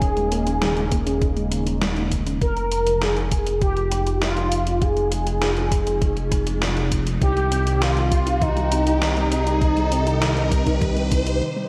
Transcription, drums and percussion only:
0.02 kick, closed hi-hat
0.17 closed hi-hat
0.32 closed hi-hat
0.47 closed hi-hat
0.62 snare, closed hi-hat
0.77 closed hi-hat
0.92 kick, closed hi-hat
1.07 closed hi-hat
1.22 kick, closed hi-hat
1.37 closed hi-hat
1.52 closed hi-hat
1.67 closed hi-hat
1.82 snare, closed hi-hat
1.97 closed hi-hat
2.12 kick, closed hi-hat
2.27 closed hi-hat
2.42 kick, closed hi-hat
2.57 closed hi-hat
2.72 closed hi-hat
2.87 closed hi-hat
3.02 snare, closed hi-hat
3.17 closed hi-hat
3.32 kick, closed hi-hat
3.47 closed hi-hat
3.62 kick, closed hi-hat
3.77 closed hi-hat
3.92 closed hi-hat
4.07 closed hi-hat
4.22 snare, closed hi-hat
4.37 closed hi-hat
4.52 closed hi-hat
4.67 closed hi-hat
4.82 kick, closed hi-hat
4.97 closed hi-hat
5.12 closed hi-hat
5.27 closed hi-hat
5.42 snare, closed hi-hat
5.57 closed hi-hat
5.72 kick, closed hi-hat
5.87 closed hi-hat
6.02 kick, closed hi-hat
6.17 closed hi-hat
6.32 kick, closed hi-hat
6.47 closed hi-hat
6.62 snare, closed hi-hat
6.77 closed hi-hat
6.92 kick, closed hi-hat
7.07 closed hi-hat
7.22 kick, closed hi-hat
7.37 closed hi-hat
7.52 closed hi-hat
7.67 closed hi-hat
7.82 snare, closed hi-hat
7.97 closed hi-hat
8.12 kick, closed hi-hat
8.27 closed hi-hat
8.42 kick, closed hi-hat
8.57 closed hi-hat
8.72 closed hi-hat
8.87 closed hi-hat
9.02 snare, closed hi-hat
9.17 closed hi-hat
9.32 closed hi-hat
9.47 closed hi-hat
9.62 kick, closed hi-hat
9.77 closed hi-hat
9.92 closed hi-hat
10.07 closed hi-hat
10.22 snare, closed hi-hat
10.37 closed hi-hat
10.52 kick, closed hi-hat
10.67 kick, closed hi-hat
10.82 kick, closed hi-hat
10.97 closed hi-hat
11.12 kick, closed hi-hat
11.27 closed hi-hat

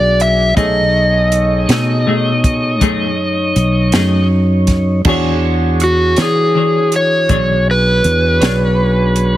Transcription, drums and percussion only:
0.20 closed hi-hat
0.57 kick, closed hi-hat
1.32 closed hi-hat
1.69 snare, closed hi-hat
2.44 kick, closed hi-hat
2.81 kick, closed hi-hat
3.56 closed hi-hat
3.92 snare, closed hi-hat
4.67 kick, snare, closed hi-hat
5.05 kick, crash
5.80 closed hi-hat
6.16 snare, closed hi-hat
6.92 closed hi-hat
7.29 kick, closed hi-hat
8.04 closed hi-hat
8.42 snare, closed hi-hat
9.16 closed hi-hat

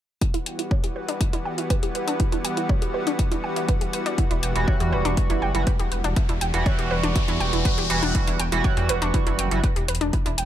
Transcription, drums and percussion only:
0.21 kick, closed hi-hat
0.34 closed hi-hat
0.46 closed hi-hat
0.59 closed hi-hat
0.71 kick
0.84 closed hi-hat
1.09 closed hi-hat
1.21 kick, closed hi-hat
1.33 closed hi-hat
1.58 closed hi-hat
1.70 kick, closed hi-hat
1.83 closed hi-hat
1.95 closed hi-hat
2.08 closed hi-hat
2.20 kick, closed hi-hat
2.32 closed hi-hat
2.45 closed hi-hat
2.57 closed hi-hat
2.69 kick
2.82 closed hi-hat
3.07 closed hi-hat
3.19 kick, closed hi-hat
3.32 closed hi-hat
3.56 closed hi-hat
3.69 kick, closed hi-hat
3.81 closed hi-hat
3.93 closed hi-hat
4.06 closed hi-hat
4.18 kick, closed hi-hat
4.31 closed hi-hat
4.43 closed hi-hat
4.56 closed hi-hat
4.68 kick
4.80 closed hi-hat
5.05 closed hi-hat
5.17 kick, closed hi-hat
5.30 closed hi-hat
5.55 closed hi-hat
5.67 kick, closed hi-hat
5.80 closed hi-hat
5.92 closed hi-hat
6.04 closed hi-hat
6.16 kick, closed hi-hat
6.29 closed hi-hat
6.41 closed hi-hat
6.54 closed hi-hat
6.66 kick, closed hi-hat
6.79 closed hi-hat
7.03 closed hi-hat
7.16 kick, closed hi-hat
7.28 closed hi-hat
7.40 closed hi-hat
7.53 closed hi-hat
7.65 kick, closed hi-hat
7.78 closed hi-hat
7.90 closed hi-hat
8.03 closed hi-hat
8.15 kick, closed hi-hat
8.27 closed hi-hat
8.40 closed hi-hat
8.52 closed hi-hat
8.64 kick, closed hi-hat
8.77 closed hi-hat
8.89 closed hi-hat
9.02 closed hi-hat
9.14 kick, closed hi-hat
9.27 closed hi-hat
9.39 closed hi-hat
9.51 closed hi-hat
9.64 kick, closed hi-hat
9.76 closed hi-hat
9.88 closed hi-hat
9.95 closed hi-hat
10.01 closed hi-hat
10.13 kick, closed hi-hat
10.26 closed hi-hat
10.38 closed hi-hat

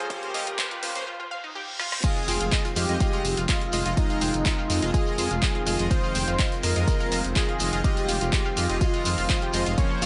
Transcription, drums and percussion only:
0.10 kick, closed hi-hat
0.23 closed hi-hat
0.34 open hi-hat
0.47 closed hi-hat
0.58 kick, clap, closed hi-hat
0.71 closed hi-hat
0.83 open hi-hat
0.95 closed hi-hat
1.80 snare
1.92 snare
2.04 kick, closed hi-hat, tambourine, crash, shekere
2.16 shekere
2.28 snare, open hi-hat, tambourine, shekere
2.41 closed hi-hat, shekere
2.52 kick, snare, clap, closed hi-hat, tambourine, shekere
2.65 closed hi-hat, shekere
2.76 open hi-hat, shekere
2.89 closed hi-hat, shekere
3.00 kick, closed hi-hat, tambourine, shekere
3.13 closed hi-hat, shekere
3.25 open hi-hat, tambourine, shekere
3.37 closed hi-hat, shekere
3.49 kick, snare, clap, closed hi-hat, tambourine, shekere
3.61 closed hi-hat
3.72 open hi-hat, tambourine, shekere
3.85 closed hi-hat, shekere
3.97 kick, closed hi-hat, tambourine, shekere
4.10 closed hi-hat, shekere
4.21 open hi-hat, tambourine, shekere
4.33 closed hi-hat, shekere
4.46 kick, snare, clap, closed hi-hat, tambourine, shekere
4.59 shekere
4.70 open hi-hat, tambourine, shekere
4.82 snare, closed hi-hat, shekere
4.94 kick, closed hi-hat, tambourine, shekere
5.07 shekere
5.18 open hi-hat, tambourine, shekere
5.31 closed hi-hat, shekere
5.42 kick, snare, clap, closed hi-hat, tambourine, shekere
5.55 closed hi-hat
5.67 open hi-hat, tambourine, shekere
5.79 closed hi-hat, shekere
5.91 kick, closed hi-hat, tambourine, shekere
6.04 shekere
6.15 snare, open hi-hat, tambourine, shekere
6.27 closed hi-hat, shekere
6.39 kick, snare, clap, closed hi-hat, tambourine, shekere
6.52 closed hi-hat, shekere
6.63 open hi-hat, shekere
6.75 closed hi-hat, shekere
6.88 kick, closed hi-hat, tambourine, shekere
7.00 closed hi-hat, shekere
7.12 open hi-hat, tambourine, shekere
7.25 closed hi-hat, shekere
7.36 kick, snare, clap, closed hi-hat, tambourine, shekere
7.49 closed hi-hat
7.60 open hi-hat, tambourine, shekere
7.73 closed hi-hat, shekere
7.84 kick, closed hi-hat, tambourine, shekere
7.97 closed hi-hat, shekere
8.09 open hi-hat, tambourine, shekere
8.21 closed hi-hat, shekere
8.33 kick, snare, clap, closed hi-hat, tambourine, shekere
8.45 shekere
8.57 open hi-hat, tambourine, shekere
8.69 snare, closed hi-hat, shekere
8.81 kick, closed hi-hat, tambourine, shekere
8.94 closed hi-hat, shekere
9.05 open hi-hat, tambourine, shekere
9.18 open hi-hat, shekere
9.29 kick, snare, clap, closed hi-hat, tambourine, shekere
9.42 closed hi-hat
9.53 open hi-hat, tambourine, shekere
9.66 closed hi-hat, shekere
9.78 kick, closed hi-hat, tambourine, shekere
9.90 shekere
10.02 snare, open hi-hat, tambourine, shekere

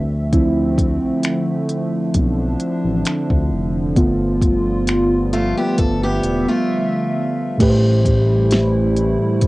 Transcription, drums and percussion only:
0.33 kick, closed hi-hat
0.78 kick, closed hi-hat
1.23 finger snap, closed hi-hat
1.69 closed hi-hat
2.14 kick, closed hi-hat
2.60 closed hi-hat
3.05 finger snap, closed hi-hat
3.30 kick
3.96 kick, closed hi-hat
4.42 kick, closed hi-hat
4.87 finger snap, closed hi-hat
5.33 closed hi-hat
5.78 kick, closed hi-hat
6.23 closed hi-hat
7.60 kick, closed hi-hat, crash
8.05 kick, closed hi-hat
8.51 snare, closed hi-hat
8.97 closed hi-hat
9.41 kick, closed hi-hat

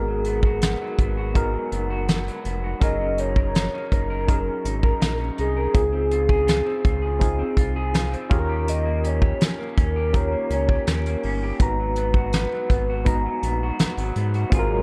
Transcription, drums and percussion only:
0.24 closed hi-hat
0.43 kick
0.61 snare, closed hi-hat
0.99 kick, closed hi-hat
1.35 kick, closed hi-hat
1.72 closed hi-hat
2.08 snare, closed hi-hat
2.28 closed hi-hat
2.45 closed hi-hat
2.81 kick, closed hi-hat
3.18 closed hi-hat
3.36 kick
3.55 snare, closed hi-hat
3.92 kick, closed hi-hat
4.28 kick, closed hi-hat
4.65 closed hi-hat
4.83 kick
5.01 snare, closed hi-hat
5.38 closed hi-hat
5.74 kick, closed hi-hat
6.11 closed hi-hat
6.29 kick
6.48 snare, closed hi-hat
6.85 kick, closed hi-hat
7.21 kick, closed hi-hat
7.57 kick, closed hi-hat
7.94 snare, closed hi-hat
8.13 closed hi-hat
8.31 kick, closed hi-hat
8.68 closed hi-hat
9.04 closed hi-hat
9.22 kick
9.40 snare, closed hi-hat
9.78 kick, closed hi-hat
10.14 kick, closed hi-hat
10.50 closed hi-hat
10.69 kick
10.87 snare, closed hi-hat
11.06 closed hi-hat
11.23 open hi-hat
11.60 kick, closed hi-hat
11.96 closed hi-hat
12.14 kick
12.32 snare, closed hi-hat
12.70 kick, closed hi-hat
13.06 kick, closed hi-hat
13.43 closed hi-hat
13.79 snare, closed hi-hat
13.98 closed hi-hat
14.15 closed hi-hat
14.34 closed hi-hat
14.52 kick, closed hi-hat

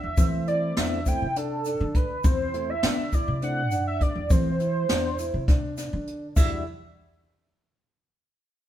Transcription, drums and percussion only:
0.17 kick, closed hi-hat, shaker
0.47 closed hi-hat
0.77 snare, closed hi-hat
1.06 kick, closed hi-hat, shaker
1.36 closed hi-hat
1.65 closed hi-hat, shaker
1.95 kick, closed hi-hat
2.24 kick, closed hi-hat, shaker
2.54 closed hi-hat
2.83 snare, closed hi-hat
3.12 kick, closed hi-hat, shaker
3.42 closed hi-hat
3.71 closed hi-hat, shaker
4.01 kick, closed hi-hat
4.30 kick, closed hi-hat, shaker
4.60 closed hi-hat, shaker
4.89 snare, closed hi-hat
5.19 closed hi-hat, shaker
5.48 kick, snare, closed hi-hat
5.77 snare, closed hi-hat, shaker
6.07 closed hi-hat
6.36 kick, crash, shaker

